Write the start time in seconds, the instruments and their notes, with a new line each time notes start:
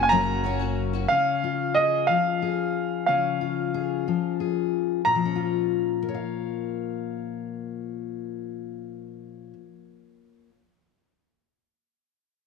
Already playing: upright bass F#1, steel-string acoustic guitar F#2 F#3 A#3 C#4 F#4
0.03 upright piano G#5
0.09 steel-string acoustic guitar F#2 C#3 F#3 A#3 C#4 F#4, upright piano A#5
0.43 steel-string acoustic guitar F#3 A#3 C#4 F#4
0.59 steel-string acoustic guitar F#3 A#3 C#4 F#4
0.93 steel-string acoustic guitar F#3 A#3 C#4 F#4
1.08 steel-string acoustic guitar C#3 C#4, upright piano F5
1.44 steel-string acoustic guitar F4
1.75 steel-string acoustic guitar G#4, upright piano D#5
2.07 steel-string acoustic guitar F3 F4, upright piano F5
2.42 steel-string acoustic guitar G#4
3.06 steel-string acoustic guitar C#3 C#4, upright piano F5
3.41 steel-string acoustic guitar F4
3.74 steel-string acoustic guitar G#4
4.08 steel-string acoustic guitar F3 F4
4.40 steel-string acoustic guitar G#4
5.05 steel-string acoustic guitar A#2, upright piano A#5
5.15 steel-string acoustic guitar F3
5.25 steel-string acoustic guitar C#4
5.36 steel-string acoustic guitar F4
6.03 steel-string acoustic guitar A#4
6.09 steel-string acoustic guitar C#5
6.14 steel-string acoustic guitar F5